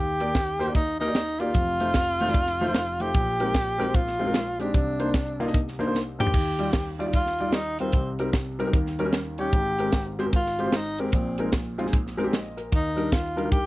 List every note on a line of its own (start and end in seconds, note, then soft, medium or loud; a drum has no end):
0.00 1.51 D#2 medium
0.00 1.51 D#3 medium
0.00 0.71 G4 loud
0.20 0.29 A#3 medium
0.20 0.29 D#4 medium
0.20 0.29 G4 medium
0.20 0.29 D5 medium
0.20 closed hi-hat medium
0.35 kick medium
0.35 snare loud
0.35 closed hi-hat medium
0.59 0.64 A#3 medium
0.59 0.64 D#4 medium
0.59 0.65 G4 medium
0.59 0.65 C5 loud
0.59 closed hi-hat medium
0.68 0.77 A#3 medium
0.68 0.77 D#4 medium
0.68 0.77 G4 medium
0.68 0.77 D5 medium
0.75 0.99 D#4 medium
0.75 kick loud
0.75 closed hi-hat medium
1.00 1.05 A#3 medium
1.00 1.42 D#4 medium
1.00 1.05 D#4 medium
1.00 1.05 G4 medium
1.00 1.05 A#4 medium
1.00 closed hi-hat soft
1.07 1.17 A#3 medium
1.07 1.17 D#4 medium
1.07 1.17 G4 medium
1.07 1.17 D5 medium
1.15 snare medium
1.15 closed hi-hat medium
1.40 1.48 A#3 medium
1.40 1.49 D#4 medium
1.40 3.03 F4 loud
1.40 1.49 G4 medium
1.40 1.49 D5 medium
1.40 closed hi-hat medium
1.54 3.11 F1 medium
1.54 3.11 F2 medium
1.54 kick loud
1.54 closed hi-hat medium
1.80 1.89 A3 medium
1.80 1.89 D#4 medium
1.80 1.89 F4 medium
1.80 1.89 C5 medium
1.80 closed hi-hat medium
1.94 kick medium
1.94 snare loud
1.94 closed hi-hat loud
2.20 2.25 A3 medium
2.20 2.25 D#4 medium
2.20 2.25 F4 medium
2.20 2.25 C5 medium
2.20 closed hi-hat medium
2.27 2.37 A3 medium
2.27 2.37 D#4 medium
2.27 2.37 F4 medium
2.27 2.37 D5 medium
2.27 snare soft
2.34 kick loud
2.34 closed hi-hat medium
2.47 snare soft
2.60 2.65 A3 medium
2.60 2.65 D#4 medium
2.60 2.65 F4 medium
2.60 2.65 C5 loud
2.60 closed hi-hat medium
2.68 2.77 A3 medium
2.68 2.77 D#4 medium
2.68 2.77 F4 medium
2.68 2.77 C5 medium
2.74 snare medium
2.74 closed hi-hat medium
3.00 3.08 A3 medium
3.00 3.08 D#4 medium
3.00 3.08 F4 medium
3.00 3.97 G4 medium
3.00 3.09 C5 medium
3.00 closed hi-hat medium
3.14 4.71 A#1 medium
3.14 4.70 A#2 medium
3.14 kick loud
3.14 closed hi-hat medium
3.40 3.48 G#3 medium
3.40 3.48 C4 medium
3.40 3.48 D#4 medium
3.40 3.49 A#4 medium
3.40 closed hi-hat medium
3.54 kick medium
3.54 snare loud
3.54 closed hi-hat medium
3.78 3.83 G#3 medium
3.78 3.84 C4 medium
3.78 3.84 D#4 medium
3.78 3.84 A#4 loud
3.78 closed hi-hat medium
3.86 3.96 G#3 medium
3.86 3.96 C4 medium
3.86 3.96 D#4 medium
3.86 3.96 C5 medium
3.94 4.60 F4 loud
3.94 kick loud
3.94 closed hi-hat medium
4.07 snare soft
4.19 4.24 G#3 medium
4.19 4.24 C4 medium
4.19 4.24 D#4 medium
4.19 4.24 F4 medium
4.19 closed hi-hat medium
4.27 4.36 G#3 medium
4.27 4.36 C4 medium
4.27 4.36 D#4 medium
4.27 4.36 A#4 medium
4.34 snare medium
4.34 closed hi-hat medium
4.59 4.68 G#3 medium
4.59 4.68 C4 medium
4.59 5.67 D4 medium
4.59 4.68 D#4 medium
4.59 4.68 G4 medium
4.59 closed hi-hat medium
4.74 6.30 C2 medium
4.74 6.30 C3 medium
4.74 kick loud
4.74 closed hi-hat medium
4.99 5.08 A#3 medium
4.99 5.08 D4 medium
4.99 5.08 D#4 medium
4.99 5.08 C5 medium
4.99 closed hi-hat medium
5.14 kick loud
5.14 snare loud
5.14 closed hi-hat medium
5.40 5.44 A#3 medium
5.40 5.44 D4 medium
5.40 5.44 D#4 medium
5.40 5.44 F4 loud
5.40 closed hi-hat medium
5.46 5.55 A#3 medium
5.46 5.56 D4 medium
5.46 5.56 D#4 medium
5.46 5.56 D#5 medium
5.46 snare soft
5.54 kick loud
5.54 closed hi-hat medium
5.68 snare soft
5.79 5.83 A#3 medium
5.79 5.83 D4 medium
5.79 5.84 D#4 medium
5.79 5.84 C5 medium
5.79 closed hi-hat medium
5.87 5.96 A#3 medium
5.87 5.96 D4 medium
5.87 5.96 D#4 medium
5.87 5.96 C5 medium
5.95 snare medium
6.19 6.27 A#3 medium
6.19 6.27 D4 medium
6.19 6.28 D#4 medium
6.19 6.96 G4 medium
6.19 6.28 C5 medium
6.19 mid tom medium
6.27 floor tom medium
6.34 7.90 D#2 medium
6.34 7.90 D#3 medium
6.34 kick loud
6.34 crash medium
6.59 6.67 G3 medium
6.59 6.68 D#4 medium
6.59 6.68 F4 medium
6.59 6.68 D5 medium
6.59 closed hi-hat medium
6.73 kick medium
6.73 snare loud
6.73 closed hi-hat medium
6.99 7.04 G3 medium
6.99 7.03 D#4 medium
6.99 7.04 F4 medium
6.99 7.04 D5 medium
6.99 closed hi-hat medium
7.06 7.15 G3 medium
7.06 7.16 D#4 medium
7.06 7.16 F4 medium
7.13 7.56 F4 medium
7.13 kick loud
7.13 closed hi-hat medium
7.26 snare soft
7.39 7.44 G3 medium
7.39 7.44 D#4 medium
7.39 7.44 F4 medium
7.39 7.44 D5 medium
7.39 closed hi-hat medium
7.48 7.56 G3 medium
7.48 7.56 D#4 medium
7.48 7.56 F4 medium
7.48 7.56 D5 medium
7.52 7.80 D#4 medium
7.52 snare medium
7.52 closed hi-hat medium
7.79 7.88 G3 medium
7.79 8.17 C4 medium
7.79 7.88 D#4 medium
7.79 7.88 F4 medium
7.79 7.88 A#4 medium
7.79 closed hi-hat medium
7.92 8.70 C2 medium
7.92 8.70 C3 medium
7.92 kick loud
7.92 closed hi-hat medium
8.19 8.28 G3 medium
8.19 8.28 C4 medium
8.19 8.28 D#4 medium
8.19 8.28 A#4 medium
8.19 closed hi-hat medium
8.33 kick loud
8.33 snare loud
8.33 closed hi-hat medium
8.59 8.63 G3 medium
8.59 8.63 C4 medium
8.59 8.63 D#4 medium
8.59 8.64 A#4 medium
8.59 closed hi-hat medium
8.67 8.74 G3 medium
8.67 8.74 C4 medium
8.67 8.74 D#4 medium
8.67 8.74 A#4 medium
8.73 9.50 D#2 medium
8.73 9.50 D#3 medium
8.73 kick loud
8.73 closed hi-hat medium
8.86 snare soft
8.99 9.03 G3 medium
8.99 9.03 C#4 medium
8.99 9.03 D#4 medium
8.99 9.04 A#4 loud
8.99 closed hi-hat medium
9.05 9.15 G3 medium
9.05 9.15 C#4 medium
9.05 9.15 D#4 medium
9.05 9.15 A#4 medium
9.13 snare medium
9.13 closed hi-hat medium
9.38 9.47 G3 medium
9.38 9.47 C#4 medium
9.38 9.47 D#4 medium
9.38 10.16 G4 loud
9.38 9.47 C#5 medium
9.38 closed hi-hat medium
9.53 11.09 G#1 medium
9.53 11.09 G#2 medium
9.53 kick loud
9.53 closed hi-hat medium
9.79 9.87 G#3 medium
9.79 9.88 C4 medium
9.79 9.88 G4 medium
9.79 9.88 A#4 medium
9.79 closed hi-hat medium
9.92 kick medium
9.92 snare loud
9.92 closed hi-hat medium
10.19 10.23 G#3 medium
10.19 10.23 C4 medium
10.19 10.23 G4 medium
10.19 10.23 C5 medium
10.19 closed hi-hat medium
10.26 10.35 G#3 medium
10.26 10.35 C4 medium
10.26 10.35 G4 medium
10.26 10.35 A#4 medium
10.33 10.78 F4 loud
10.33 kick loud
10.33 closed hi-hat medium
10.46 snare soft
10.59 10.63 G#3 medium
10.59 10.63 C4 medium
10.59 10.63 G4 medium
10.59 10.63 C5 medium
10.59 closed hi-hat medium
10.66 10.75 G#3 medium
10.66 10.75 C4 medium
10.66 10.75 G4 medium
10.66 10.75 C5 medium
10.72 snare medium
10.72 closed hi-hat medium
10.76 11.03 D#4 medium
10.98 11.07 G#3 medium
10.98 11.07 C4 medium
10.98 11.40 C4 medium
10.98 11.07 G4 medium
10.98 11.08 A#4 medium
10.98 closed hi-hat medium
11.12 12.69 A#1 medium
11.12 12.69 A#2 medium
11.12 kick loud
11.12 closed hi-hat medium
11.38 11.47 G#3 medium
11.38 11.47 C4 medium
11.38 11.47 D#4 medium
11.38 11.47 A#4 medium
11.38 closed hi-hat medium
11.52 kick medium
11.52 snare loud
11.52 closed hi-hat medium
11.78 11.83 G#3 medium
11.78 11.83 C4 medium
11.78 11.83 D#4 medium
11.78 11.83 F4 medium
11.78 closed hi-hat medium
11.85 11.94 G#3 medium
11.85 11.95 C4 medium
11.85 11.95 D#4 medium
11.85 11.95 G#4 medium
11.85 snare soft
11.93 kick loud
11.93 closed hi-hat medium
12.07 snare soft
12.17 12.22 G#3 medium
12.17 12.22 C4 medium
12.17 12.22 D#4 medium
12.17 12.23 A#4 medium
12.17 closed hi-hat medium
12.24 12.34 G#3 medium
12.24 12.34 C4 medium
12.24 12.34 D#4 medium
12.24 12.34 G4 medium
12.32 12.57 D#5 medium
12.32 snare medium
12.32 closed hi-hat medium
12.57 12.95 A#4 medium
12.57 closed hi-hat medium
12.72 13.66 D#2 medium
12.72 13.66 D#3 medium
12.72 13.14 D#4 medium
12.72 kick loud
12.72 closed hi-hat medium
12.96 13.05 G3 medium
12.96 13.06 D4 medium
12.96 13.06 D#4 medium
12.96 13.06 A#4 medium
12.96 closed hi-hat medium
13.12 13.51 F4 medium
13.12 kick medium
13.12 snare medium
13.12 closed hi-hat medium
13.36 13.41 G3 medium
13.36 13.41 D4 medium
13.36 13.42 D#4 medium
13.36 13.42 A#4 medium
13.36 closed hi-hat medium
13.45 13.54 G3 medium
13.45 13.54 D4 medium
13.45 13.54 D#4 medium
13.45 13.54 A#4 medium
13.52 13.66 G4 medium
13.52 kick loud
13.52 closed hi-hat medium